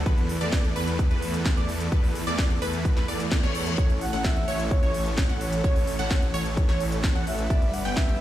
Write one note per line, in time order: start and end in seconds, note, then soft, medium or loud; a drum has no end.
0.06 0.39 E2 loud
0.06 0.38 E3 medium
0.06 0.38 A3 medium
0.06 0.38 B3 medium
0.06 0.38 A4 medium
0.06 0.38 B4 medium
0.06 kick loud
0.06 closed hi-hat medium
0.18 closed hi-hat soft
0.29 open hi-hat loud
0.41 0.73 E2 loud
0.41 0.73 E3 loud
0.41 0.73 A3 medium
0.41 0.73 B3 medium
0.41 0.73 A4 medium
0.41 0.73 D5 loud
0.41 closed hi-hat medium
0.52 kick loud
0.52 snare loud
0.52 closed hi-hat medium
0.64 closed hi-hat soft
0.76 1.08 E2 loud
0.76 1.08 E3 loud
0.76 1.08 A3 medium
0.76 1.08 B3 medium
0.76 1.08 A4 medium
0.76 1.08 B4 loud
0.76 open hi-hat loud
0.87 closed hi-hat medium
0.99 kick loud
0.99 closed hi-hat medium
1.11 1.55 E2 medium
1.11 1.54 E3 medium
1.11 1.54 A3 medium
1.11 1.54 B3 medium
1.11 1.54 A4 medium
1.11 1.54 B4 medium
1.11 closed hi-hat soft
1.22 open hi-hat loud
1.34 closed hi-hat medium
1.45 kick loud
1.45 snare loud
1.45 closed hi-hat medium
1.57 1.90 E2 loud
1.57 1.89 E3 medium
1.57 1.89 A3 medium
1.57 1.89 B3 medium
1.57 1.89 A4 medium
1.57 1.89 D5 medium
1.57 closed hi-hat soft
1.69 open hi-hat loud
1.80 closed hi-hat medium
1.92 2.25 E2 loud
1.92 2.24 A3 medium
1.92 2.24 B3 medium
1.92 2.24 A4 medium
1.92 2.24 B4 medium
1.92 kick loud
1.92 closed hi-hat medium
2.04 open hi-hat medium
2.15 open hi-hat loud
2.27 2.60 E2 loud
2.27 2.59 E3 loud
2.27 2.59 A3 medium
2.27 2.59 B3 medium
2.27 2.59 A4 medium
2.27 2.59 D5 loud
2.27 closed hi-hat medium
2.38 kick loud
2.38 snare loud
2.38 closed hi-hat medium
2.50 closed hi-hat soft
2.62 2.94 E2 loud
2.62 2.94 E3 medium
2.62 2.94 A3 medium
2.62 2.94 B3 medium
2.62 2.94 A4 medium
2.62 2.94 B4 loud
2.62 open hi-hat loud
2.73 closed hi-hat medium
2.85 kick loud
2.85 closed hi-hat medium
2.85 reverse cymbal medium
2.97 3.06 E2 loud
2.97 3.06 E3 medium
2.97 3.06 A3 medium
2.97 3.06 B3 medium
2.97 3.06 A4 medium
2.97 3.06 B4 medium
2.97 snare soft
2.97 closed hi-hat soft
3.08 3.41 E2 medium
3.08 3.40 E3 medium
3.08 3.40 A3 medium
3.08 3.40 B3 medium
3.08 3.40 A4 medium
3.08 3.40 D5 medium
3.08 open hi-hat loud
3.20 closed hi-hat medium
3.31 kick loud
3.31 snare loud
3.31 closed hi-hat medium
3.43 3.76 E2 loud
3.43 3.73 E3 loud
3.43 3.73 A3 medium
3.43 3.73 B3 medium
3.43 3.73 A4 medium
3.43 3.73 C#5 loud
3.43 closed hi-hat soft
3.55 open hi-hat loud
3.66 closed hi-hat medium
3.78 4.11 A1 loud
3.78 4.10 E3 medium
3.78 4.10 A3 medium
3.78 4.10 C#4 medium
3.78 4.10 A4 medium
3.78 4.10 C#5 medium
3.78 kick loud
3.78 closed hi-hat medium
3.90 closed hi-hat soft
4.01 4.26 F#5 loud
4.01 open hi-hat loud
4.13 4.46 A1 loud
4.13 4.45 E3 loud
4.13 4.45 A3 medium
4.13 4.45 C#4 medium
4.13 4.45 A4 medium
4.13 4.45 F#5 loud
4.13 closed hi-hat medium
4.24 4.70 E5 loud
4.24 kick loud
4.24 snare loud
4.24 closed hi-hat medium
4.36 closed hi-hat soft
4.48 4.80 A1 loud
4.48 4.80 E3 medium
4.48 4.80 A3 medium
4.48 4.80 C#4 medium
4.48 4.80 A4 medium
4.48 4.80 C#5 loud
4.48 open hi-hat loud
4.60 closed hi-hat medium
4.71 5.14 C#5 medium
4.71 kick loud
4.71 closed hi-hat medium
4.83 5.27 A1 loud
4.83 5.26 E3 medium
4.83 5.27 A3 medium
4.83 5.27 C#4 medium
4.83 5.26 A4 medium
4.83 5.26 C#5 medium
4.83 closed hi-hat soft
4.94 open hi-hat loud
5.06 closed hi-hat medium
5.18 kick loud
5.18 snare loud
5.18 closed hi-hat medium
5.29 5.62 A1 loud
5.29 5.61 E3 medium
5.29 5.61 A3 medium
5.29 5.61 C#4 medium
5.29 5.61 A4 medium
5.29 5.61 F#5 medium
5.29 closed hi-hat soft
5.41 6.30 C#5 loud
5.41 open hi-hat loud
5.53 closed hi-hat medium
5.64 5.97 A1 loud
5.64 5.96 E3 medium
5.64 5.96 A3 medium
5.64 5.96 C#4 medium
5.64 5.96 A4 medium
5.64 5.96 C#5 medium
5.64 kick loud
5.64 closed hi-hat medium
5.76 open hi-hat medium
5.87 open hi-hat loud
5.99 6.32 A1 loud
5.99 6.31 E3 loud
5.99 6.31 A3 medium
5.99 6.31 C#4 medium
5.99 6.31 A4 medium
5.99 6.31 F#5 loud
5.99 closed hi-hat soft
6.11 kick loud
6.11 snare loud
6.11 closed hi-hat medium
6.22 closed hi-hat soft
6.34 6.67 A1 loud
6.34 6.66 E3 medium
6.34 6.66 A3 medium
6.34 6.66 C#4 medium
6.34 6.66 A4 medium
6.34 6.66 C#5 loud
6.34 open hi-hat loud
6.46 closed hi-hat medium
6.57 kick loud
6.57 closed hi-hat medium
6.69 7.13 A1 medium
6.69 7.13 E3 medium
6.69 7.13 A3 medium
6.69 7.13 C#4 medium
6.69 7.13 A4 medium
6.69 7.13 C#5 medium
6.69 snare soft
6.69 closed hi-hat soft
6.80 open hi-hat loud
6.92 closed hi-hat medium
7.04 kick loud
7.04 snare loud
7.04 closed hi-hat medium
7.15 7.48 A1 loud
7.15 7.47 E3 medium
7.15 7.47 A3 medium
7.15 7.47 C#4 medium
7.15 7.47 A4 medium
7.15 7.47 F#5 medium
7.15 closed hi-hat soft
7.27 7.75 E5 loud
7.27 open hi-hat loud
7.39 closed hi-hat medium
7.50 7.83 G1 loud
7.50 7.82 G3 medium
7.50 7.82 B3 medium
7.50 7.82 D4 medium
7.50 7.82 B4 medium
7.50 7.82 D5 medium
7.50 kick loud
7.50 closed hi-hat soft
7.62 closed hi-hat soft
7.74 7.98 F#5 loud
7.74 open hi-hat loud
7.85 8.18 G1 loud
7.85 8.17 G3 loud
7.85 8.17 B3 medium
7.85 8.17 D4 medium
7.85 8.17 B4 medium
7.85 8.17 G5 loud
7.85 closed hi-hat medium
7.97 8.21 E5 loud
7.97 kick loud
7.97 snare loud
7.97 closed hi-hat medium
8.08 closed hi-hat soft